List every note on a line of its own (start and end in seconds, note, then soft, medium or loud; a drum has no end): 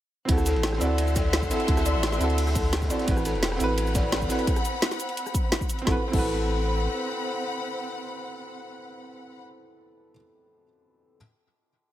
0.25 0.57 D2 loud
0.25 0.76 C4 medium
0.25 0.78 E4 medium
0.25 3.05 E5 medium
0.25 3.05 F#5 medium
0.25 3.05 C6 medium
0.25 kick loud
0.25 closed hi-hat loud
0.25 ride medium
0.30 0.80 F#4 medium
0.30 0.81 A4 medium
0.38 cross-stick soft
0.38 cabasa soft
0.46 0.62 A4 medium
0.46 snare soft
0.46 closed hi-hat medium
0.46 ride medium
0.46 cabasa medium
0.55 0.80 A1 loud
0.55 ride soft
0.63 snare loud
0.63 closed hi-hat medium
0.63 ride medium
0.73 cross-stick medium
0.73 snare soft
0.78 1.49 D2 loud
0.78 1.47 C4 medium
0.78 1.48 E4 medium
0.78 0.97 D5 medium
0.78 closed hi-hat medium
0.78 ride medium
0.78 cabasa medium
0.83 1.50 F#4 medium
0.83 1.51 A4 loud
0.98 closed hi-hat loud
0.98 ride loud
1.07 ride soft
1.07 cabasa soft
1.15 1.32 A4 medium
1.15 kick loud
1.15 snare medium
1.15 closed hi-hat medium
1.15 ride medium
1.15 cabasa medium
1.33 snare loud
1.33 closed hi-hat loud
1.33 ride medium
1.42 kick medium
1.42 cabasa soft
1.49 1.63 C4 medium
1.49 1.65 E4 medium
1.49 1.67 F#4 medium
1.49 1.67 A4 medium
1.49 snare medium
1.49 closed hi-hat medium
1.49 ride medium
1.49 cabasa medium
1.60 closed hi-hat soft
1.65 1.96 D2 loud
1.65 2.16 C4 medium
1.65 2.18 E4 medium
1.65 kick loud
1.65 closed hi-hat medium
1.65 ride medium
1.69 2.19 F#4 medium
1.69 2.20 A4 medium
1.77 cross-stick soft
1.77 snare soft
1.77 closed hi-hat soft
1.77 cabasa soft
1.86 2.01 D5 medium
1.86 closed hi-hat medium
1.86 ride medium
1.86 cabasa medium
1.95 2.19 A1 loud
2.03 snare loud
2.03 closed hi-hat loud
2.03 ride medium
2.12 snare soft
2.12 cabasa soft
2.17 2.89 D2 loud
2.17 2.87 C4 medium
2.17 2.88 E4 medium
2.17 2.36 A4 medium
2.17 closed hi-hat medium
2.17 cabasa medium
2.22 2.89 F#4 medium
2.22 2.90 A4 loud
2.22 ride medium
2.30 closed hi-hat soft
2.38 closed hi-hat medium
2.38 open hi-hat medium
2.47 cross-stick soft
2.47 snare soft
2.47 cabasa soft
2.55 2.71 A4 medium
2.55 kick loud
2.55 closed hi-hat medium
2.55 ride medium
2.55 cabasa medium
2.73 snare loud
2.73 closed hi-hat loud
2.73 ride medium
2.82 kick medium
2.82 snare medium
2.82 cabasa soft
2.88 3.03 C4 medium
2.88 3.05 E4 medium
2.88 3.06 F#4 medium
2.88 3.07 A4 medium
2.88 3.06 D5 medium
2.88 closed hi-hat medium
2.88 ride medium
2.88 cabasa medium
2.99 snare soft
2.99 closed hi-hat soft
3.04 3.36 A1 loud
3.04 3.55 C4 medium
3.04 5.84 C4 medium
3.04 3.57 E4 medium
3.04 5.84 F#5 medium
3.04 5.84 B5 loud
3.04 kick loud
3.04 closed hi-hat medium
3.04 ride loud
3.09 3.59 F#4 medium
3.09 3.60 B4 medium
3.17 cross-stick soft
3.17 cabasa soft
3.25 3.41 A4 medium
3.25 snare soft
3.25 closed hi-hat medium
3.25 ride medium
3.25 cabasa medium
3.34 3.59 E1 loud
3.34 ride soft
3.43 snare loud
3.43 closed hi-hat medium
3.43 ride medium
3.52 cross-stick medium
3.52 snare soft
3.57 4.29 A1 loud
3.57 4.26 C4 loud
3.57 4.27 E4 medium
3.57 3.76 A4 medium
3.57 closed hi-hat medium
3.57 ride medium
3.57 cabasa medium
3.61 4.28 F#4 medium
3.61 4.30 B4 loud
3.78 closed hi-hat medium
3.78 ride medium
3.87 ride soft
3.87 cabasa soft
3.95 4.11 D5 medium
3.95 kick loud
3.95 snare medium
3.95 closed hi-hat medium
3.95 ride medium
3.95 cabasa medium
4.12 snare loud
4.12 closed hi-hat medium
4.12 ride medium
4.22 kick medium
4.22 cabasa soft
4.28 4.44 C4 medium
4.28 4.45 E4 medium
4.28 4.46 F#4 medium
4.28 4.46 A4 medium
4.28 4.46 B4 medium
4.28 snare medium
4.28 closed hi-hat medium
4.28 ride medium
4.28 cabasa medium
4.39 closed hi-hat soft
4.47 kick loud
4.47 closed hi-hat medium
4.56 cross-stick soft
4.56 closed hi-hat soft
4.56 cabasa soft
4.65 closed hi-hat medium
4.65 cabasa medium
4.82 snare loud
4.82 closed hi-hat medium
4.91 snare soft
4.91 cabasa soft
5.00 closed hi-hat medium
5.00 cabasa medium
5.09 closed hi-hat soft
5.17 closed hi-hat medium
5.26 cross-stick soft
5.26 cabasa soft
5.34 kick loud
5.34 closed hi-hat medium
5.34 cabasa medium
5.52 snare loud
5.52 closed hi-hat medium
5.61 kick medium
5.61 cabasa soft
5.69 closed hi-hat medium
5.69 cabasa medium
5.79 5.94 C4 medium
5.79 closed hi-hat soft
5.85 5.97 A1 loud
5.85 9.42 C4 medium
5.85 5.96 E4 medium
5.85 5.98 F#4 medium
5.85 5.97 A4 medium
5.85 9.42 F#5 medium
5.85 9.42 B5 medium
5.85 kick loud
5.85 snare medium
5.92 6.00 B4 loud
6.08 10.09 C4 medium
6.08 10.11 E4 medium
6.13 6.87 A1 loud
6.13 10.13 F#4 medium
6.13 6.23 A4 medium
6.13 kick loud
6.13 crash medium
6.19 10.14 B4 medium